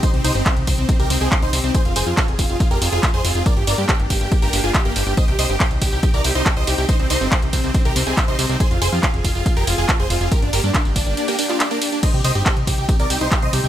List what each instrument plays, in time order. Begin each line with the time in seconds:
Already playing: supersaw synth C4 D#4 G4
0.03 supersaw synth D#4 C5, kick, closed hi-hat, tambourine
0.14 analog synth bass C2, supersaw synth C4, closed hi-hat
0.24 analog synth bass C2, supersaw synth D#4 C5, open hi-hat, ride, tambourine
0.35 analog synth bass G1, supersaw synth C4, tambourine
0.46 supersaw synth C4, kick, clap, closed hi-hat, tambourine
0.57 analog synth bass C2, closed hi-hat
0.67 analog synth bass C2, supersaw synth C4, kick, open hi-hat, ride, tambourine
0.78 analog synth bass C2, supersaw synth C4, closed hi-hat, tambourine
0.89 supersaw synth C4, kick, closed hi-hat, tambourine
1.00 analog synth bass C2, supersaw synth G4 A#4, closed hi-hat, tambourine
1.10 analog synth bass C2, supersaw synth C4, open hi-hat, ride, tambourine
1.21 analog synth bass C2, supersaw synth C4 G#4, tambourine
1.32 kick, clap, closed hi-hat, tambourine
1.42 analog synth bass C2, supersaw synth D#4 C5, closed hi-hat
1.53 analog synth bass C2, supersaw synth C4, open hi-hat, ride, tambourine
1.64 analog synth bass C2, supersaw synth C4, closed hi-hat, tambourine
1.74 supersaw synth F4 G#4 C5, kick, closed hi-hat, tambourine
1.85 analog synth bass F1, supersaw synth F4, closed hi-hat
1.96 analog synth bass F1, supersaw synth G#4 C5, open hi-hat, ride, tambourine
2.07 analog synth bass F2, supersaw synth F4, closed hi-hat, tambourine
2.17 supersaw synth F4, kick, clap, closed hi-hat, tambourine
2.28 analog synth bass F1, closed hi-hat
2.39 analog synth bass F1, supersaw synth F4, kick, open hi-hat, ride, tambourine
2.49 analog synth bass F1, supersaw synth F4, closed hi-hat, tambourine
2.60 supersaw synth F4, kick, closed hi-hat, tambourine
2.71 analog synth bass F1, supersaw synth G4 A#4, closed hi-hat, tambourine
2.82 analog synth bass F1, supersaw synth F4, open hi-hat, ride, tambourine
2.92 analog synth bass F1, supersaw synth F4 G#4, closed hi-hat, tambourine
3.03 kick, clap, closed hi-hat, tambourine
3.14 analog synth bass F1, supersaw synth G#4 C5, closed hi-hat
3.25 analog synth bass F1, supersaw synth F4, open hi-hat, ride, tambourine
3.35 analog synth bass F1, supersaw synth F4, closed hi-hat, tambourine
3.46 supersaw synth A#3 D4 G4 A#4 D5, kick, closed hi-hat, tambourine
3.57 analog synth bass G1, supersaw synth G4, closed hi-hat
3.67 analog synth bass G1, supersaw synth A#4 D5, open hi-hat, ride, tambourine
3.78 analog synth bass G2, supersaw synth G4, closed hi-hat, tambourine
3.89 supersaw synth G4, kick, clap, closed hi-hat, tambourine
4.00 analog synth bass G1, closed hi-hat
4.10 analog synth bass G1, supersaw synth G4, kick, open hi-hat, ride, tambourine
4.21 analog synth bass G1, supersaw synth G4, closed hi-hat, tambourine
4.32 supersaw synth G4, kick, closed hi-hat, tambourine
4.42 analog synth bass G1, supersaw synth G4 A#4, open hi-hat, tambourine
4.53 analog synth bass G1, supersaw synth G4, open hi-hat, ride, tambourine
4.64 analog synth bass G1, supersaw synth F4 G#4, closed hi-hat
4.74 kick, clap, closed hi-hat, tambourine
4.85 analog synth bass G1, supersaw synth A#3 G4, closed hi-hat
4.96 analog synth bass G1, supersaw synth G4, open hi-hat, ride, tambourine
5.07 analog synth bass G1, supersaw synth G4, tambourine
5.17 supersaw synth C4 D#4 C5 D#5, kick, closed hi-hat, tambourine
5.28 analog synth bass C2, supersaw synth G4, closed hi-hat
5.39 analog synth bass C2, supersaw synth C5 D#5, open hi-hat, ride, tambourine
5.49 analog synth bass G1, supersaw synth G4, closed hi-hat, tambourine
5.60 supersaw synth G4, kick, clap, closed hi-hat, tambourine
5.71 analog synth bass C2, closed hi-hat
5.82 analog synth bass C2, supersaw synth G4, kick, open hi-hat, ride, tambourine
5.92 analog synth bass C2, supersaw synth G4, closed hi-hat, tambourine
6.03 supersaw synth G4, kick, closed hi-hat, tambourine
6.14 analog synth bass C2, supersaw synth A#4 D5, closed hi-hat, tambourine
6.24 analog synth bass C2, supersaw synth G4, open hi-hat, ride, tambourine
6.35 analog synth bass C2, supersaw synth D#4 C5, closed hi-hat, tambourine
6.46 supersaw synth G4, kick, clap, closed hi-hat, tambourine
6.57 analog synth bass C2, supersaw synth C5 D#5, closed hi-hat
6.67 analog synth bass C2, supersaw synth G4, open hi-hat, ride, tambourine
6.78 analog synth bass C2, supersaw synth G4, closed hi-hat, tambourine
6.89 supersaw synth D#4 C5, kick, closed hi-hat, tambourine
6.99 analog synth bass C2, supersaw synth C4, closed hi-hat
7.10 analog synth bass C2, supersaw synth D#4 C5, open hi-hat, ride, tambourine
7.21 analog synth bass G1, supersaw synth C4, closed hi-hat, tambourine
7.32 supersaw synth C4, kick, clap, closed hi-hat, tambourine
7.42 analog synth bass C2, closed hi-hat
7.53 analog synth bass C2, supersaw synth C4, kick, open hi-hat, ride, tambourine
7.64 analog synth bass C2, supersaw synth C4, closed hi-hat, tambourine
7.74 supersaw synth C4, kick, closed hi-hat, tambourine
7.85 analog synth bass C2, supersaw synth G4 A#4, closed hi-hat, tambourine
7.96 analog synth bass C2, supersaw synth C4, open hi-hat, ride, tambourine
8.07 analog synth bass C2, supersaw synth C4 G#4, closed hi-hat, tambourine
8.17 supersaw synth C4, kick, clap, closed hi-hat, tambourine
8.28 analog synth bass C2, supersaw synth D#4 C5, closed hi-hat
8.39 analog synth bass C2, supersaw synth C4, open hi-hat, ride, tambourine
8.49 analog synth bass C2, supersaw synth C4, closed hi-hat, tambourine
8.60 supersaw synth F4 G#4 C5, kick, closed hi-hat, tambourine
8.71 analog synth bass F1, supersaw synth F4, closed hi-hat
8.82 analog synth bass F1, supersaw synth G#4 C5, open hi-hat, ride, tambourine
8.92 analog synth bass F2, supersaw synth F4, tambourine
9.03 supersaw synth F4, kick, clap, closed hi-hat, tambourine
9.14 analog synth bass F1, closed hi-hat
9.24 analog synth bass F1, supersaw synth F4, kick, open hi-hat, ride, tambourine
9.35 analog synth bass F1, supersaw synth F4, closed hi-hat, tambourine
9.46 supersaw synth F4, kick, closed hi-hat, tambourine
9.57 analog synth bass F1, supersaw synth G4 A#4, closed hi-hat, tambourine
9.67 analog synth bass F1, supersaw synth F4, open hi-hat, ride, tambourine
9.78 analog synth bass F1, supersaw synth F4 G#4, tambourine
9.89 kick, clap, closed hi-hat, tambourine
9.99 analog synth bass F1, supersaw synth G#4 C5, closed hi-hat
10.10 analog synth bass F1, supersaw synth F4, open hi-hat, ride, tambourine
10.21 analog synth bass F1, supersaw synth F4, closed hi-hat, tambourine
10.32 supersaw synth A#3 D4 G4 A#4, kick, closed hi-hat, tambourine
10.42 analog synth bass G1, supersaw synth D4, closed hi-hat
10.53 analog synth bass G1, supersaw synth G4 A#4, open hi-hat, ride, tambourine
10.64 analog synth bass G2, supersaw synth D4, tambourine
10.74 supersaw synth D4, kick, clap, closed hi-hat, tambourine
10.85 analog synth bass G1, closed hi-hat, tambourine
10.96 analog synth bass G1, supersaw synth D4, kick, open hi-hat, ride, tambourine
11.07 analog synth bass G1, supersaw synth D4, closed hi-hat, tambourine
11.17 supersaw synth D4, closed hi-hat, tambourine
11.28 supersaw synth A#3 G4, open hi-hat, tambourine
11.39 supersaw synth D4, open hi-hat, ride, tambourine
11.49 supersaw synth D4 F4, clap, closed hi-hat, tambourine
11.60 supersaw synth D4, clap, closed hi-hat, tambourine
11.71 supersaw synth A#3 D4, closed hi-hat, tambourine
11.82 supersaw synth D4, open hi-hat, ride, tambourine
11.92 supersaw synth D4, closed hi-hat, tambourine
12.03 supersaw synth C4 D#4 C5 D#5, kick, closed hi-hat, crash, tambourine
12.14 analog synth bass C2, supersaw synth G4, closed hi-hat
12.24 analog synth bass C2, supersaw synth C5 D#5, open hi-hat, ride, tambourine
12.35 analog synth bass G1, supersaw synth G4, closed hi-hat, tambourine
12.46 supersaw synth G4, kick, clap, closed hi-hat, tambourine
12.57 analog synth bass C2, closed hi-hat
12.67 analog synth bass C2, supersaw synth G4, kick, open hi-hat, ride, tambourine
12.78 analog synth bass C2, supersaw synth G4, closed hi-hat, tambourine
12.89 supersaw synth G4, kick, closed hi-hat, tambourine
12.99 analog synth bass C2, supersaw synth A#4 D5, closed hi-hat, tambourine
13.10 analog synth bass C2, supersaw synth G4, open hi-hat, ride, tambourine
13.21 analog synth bass C2, supersaw synth D#4 C5, closed hi-hat, tambourine
13.32 supersaw synth G4, kick, clap, closed hi-hat, tambourine
13.42 analog synth bass C2, supersaw synth C5 D#5, closed hi-hat
13.53 analog synth bass C2, supersaw synth G4, open hi-hat, ride, tambourine
13.64 analog synth bass C2, supersaw synth G4, closed hi-hat, tambourine